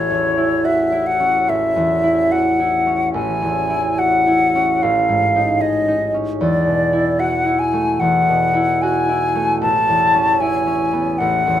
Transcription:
Already playing: harp A1 C#4 E4 F#4, flute C#5
0.10 harp E2
0.38 harp E4
0.64 harp F#4, flute E5
0.92 harp E4
1.07 flute F#5
1.20 harp C#4
1.48 harp A1, flute E5
1.76 harp E2
2.04 harp E4
2.32 harp F#4, flute F#5
2.60 harp E4
2.87 harp C#4
3.14 harp A1, flute G#5
3.42 harp E2
3.70 harp E4
3.98 harp F#4, flute F#5
4.27 harp E4
4.55 harp C#4
4.82 harp A1, flute F5
5.09 harp G#2
5.36 harp D#4
5.60 harp G#4, flute D#5
5.88 harp D#4
6.14 harp C#4
6.40 harp E2, flute D5
6.67 harp B2
6.93 harp E4
7.19 harp F#4, flute F#5
7.46 harp E4
7.59 flute G#5
7.73 harp A3
8.00 harp E2, flute F#5
8.29 harp B2
8.55 harp E4
8.82 harp F#4, flute G#5
9.09 harp E4
9.35 harp A3
9.61 harp A1, flute A5
9.89 harp E2
10.15 harp C#4
10.40 harp E4, flute G#5
10.67 harp C#4
10.93 harp B3
11.18 harp A1, flute F#5
11.47 harp E2

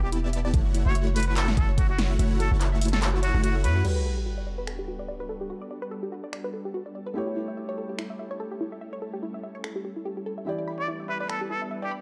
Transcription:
Already playing: 808-style bass E1, supersaw synth B3 E4 G4 D5 A5
0.03 muted trumpet G4, synth arpeggio sound G4
0.12 synth arpeggio sound E4, closed hi-hat
0.24 synth arpeggio sound E5
0.33 synth arpeggio sound E5, closed hi-hat
0.45 synth arpeggio sound D5
0.54 808-style bass F#1, supersaw synth A3 E4 F#4 C#5 F#5, synth arpeggio sound A4, kick, closed hi-hat
0.65 synth arpeggio sound F#4
0.75 synth arpeggio sound E4, closed hi-hat
0.86 808-style bass F#1, supersaw synth A3 E4 F#4 C#5 F#5, muted trumpet C#5, synth arpeggio sound E5
0.95 synth arpeggio sound E5, closed hi-hat
1.07 synth arpeggio sound C#5
1.16 synth arpeggio sound A4, muted trumpet B4, closed hi-hat, open hi-hat
1.23 closed hi-hat
1.28 synth arpeggio sound F#4, muted trumpet B4
1.37 synth arpeggio sound E4, muted trumpet A4, clap, closed hi-hat
1.48 synth arpeggio sound E5, snare
1.57 808-style bass F#1, supersaw synth A3 E4 F#4 C#5, muted trumpet A4, synth arpeggio sound E5, kick, closed hi-hat
1.69 synth arpeggio sound C#5
1.78 muted trumpet F#4, synth arpeggio sound A4, kick, closed hi-hat
1.90 synth arpeggio sound F#4, muted trumpet F#4
1.99 synth arpeggio sound E4, snare, closed hi-hat
2.10 synth arpeggio sound E5
2.19 808-style bass F#1, supersaw synth A3 E4 F#4 C#5 F#5, synth arpeggio sound E5, closed hi-hat
2.31 synth arpeggio sound C#5
2.40 muted trumpet A4, synth arpeggio sound A4, closed hi-hat
2.51 808-style bass F#1, supersaw synth A3 E4 F#4 C#5 A5, synth arpeggio sound F#4
2.61 synth arpeggio sound E4, clap, closed hi-hat
2.72 synth arpeggio sound E5
2.81 synth arpeggio sound E5, open hi-hat
2.85 closed hi-hat
2.88 closed hi-hat
2.93 muted trumpet A4, synth arpeggio sound C#5, snare
3.02 synth arpeggio sound A4, muted trumpet A4, clap, closed hi-hat
3.14 synth arpeggio sound F#4
3.23 muted trumpet F#4, synth arpeggio sound C#5, closed hi-hat
3.34 808-style bass F#1, supersaw synth A3 E4 F#4 C#5 F#5, synth arpeggio sound F#4
3.44 synth arpeggio sound F#4, muted trumpet F#4, closed hi-hat
3.55 synth arpeggio sound A4
3.64 808-style bass F#2, supersaw synth A3 E4 F#4 C#5 F#5, muted trumpet B4, synth arpeggio sound C#5, closed hi-hat
3.76 synth arpeggio sound F#4
3.83 felt piano G3 F#4 A4, ambient pad G3 B3 D4 F#4 A4, synth arpeggio sound D5, crash, sub drop
3.87 felt piano B4
3.96 synth arpeggio sound B4
4.06 synth arpeggio sound A4
4.17 synth arpeggio sound G4
4.26 synth arpeggio sound F#4
4.38 synth arpeggio sound D5
4.47 synth arpeggio sound D5
4.58 synth arpeggio sound B4
4.67 synth arpeggio sound A4, finger snap
4.79 synth arpeggio sound G4
4.88 synth arpeggio sound F#4
4.99 synth arpeggio sound D5
5.08 synth arpeggio sound D5
5.20 synth arpeggio sound B4
5.29 synth arpeggio sound A4
5.41 synth arpeggio sound G4
5.50 synth arpeggio sound F#4
5.62 synth arpeggio sound D5
5.71 synth arpeggio sound D5
5.82 synth arpeggio sound B4
5.91 synth arpeggio sound A4
6.03 synth arpeggio sound G4
6.12 synth arpeggio sound F#4
6.24 synth arpeggio sound D5
6.33 synth arpeggio sound D5, finger snap
6.44 synth arpeggio sound B4
6.54 synth arpeggio sound A4
6.65 synth arpeggio sound G4
6.74 synth arpeggio sound F#4
6.86 synth arpeggio sound D5
6.95 synth arpeggio sound D5
7.07 synth arpeggio sound B4
7.14 ambient pad G3 A3 C#4 E4, felt piano A3 E4 G4, synth arpeggio sound A4
7.18 felt piano C#5
7.27 synth arpeggio sound G4
7.36 synth arpeggio sound E4
7.48 synth arpeggio sound E5
7.57 synth arpeggio sound E5
7.69 synth arpeggio sound C#5
7.78 synth arpeggio sound A4
7.89 synth arpeggio sound G4
7.98 synth arpeggio sound E4, finger snap
8.10 synth arpeggio sound E5
8.19 synth arpeggio sound E5
8.31 synth arpeggio sound C#5
8.40 synth arpeggio sound A4
8.51 synth arpeggio sound G4
8.61 synth arpeggio sound E4
8.72 synth arpeggio sound E5
8.81 synth arpeggio sound E5
8.93 synth arpeggio sound C#5
9.02 synth arpeggio sound A4
9.14 synth arpeggio sound G4
9.23 synth arpeggio sound E4
9.34 synth arpeggio sound E5
9.43 synth arpeggio sound E5
9.55 synth arpeggio sound C#5
9.64 synth arpeggio sound A4, finger snap
9.76 synth arpeggio sound G4
9.85 synth arpeggio sound G4
9.96 synth arpeggio sound E4
10.05 synth arpeggio sound G4
10.17 synth arpeggio sound G4
10.26 synth arpeggio sound A4
10.38 synth arpeggio sound E5
10.45 felt piano E3 E4 G4 D5, ambient pad G3 B3 D4 B4, synth arpeggio sound E5
10.58 synth arpeggio sound D5
10.68 synth arpeggio sound B5
10.79 synth arpeggio sound G4, muted trumpet D5
10.88 synth arpeggio sound E4
11.00 synth arpeggio sound E5
11.09 muted trumpet B4, synth arpeggio sound E5
11.20 muted trumpet B4, synth arpeggio sound D5
11.29 muted trumpet A4, synth arpeggio sound B5, finger snap
11.41 synth arpeggio sound G4
11.50 synth arpeggio sound E4, muted trumpet A4
11.62 synth arpeggio sound E5
11.71 synth arpeggio sound E5
11.82 muted trumpet G4, synth arpeggio sound D5
11.91 synth arpeggio sound B5

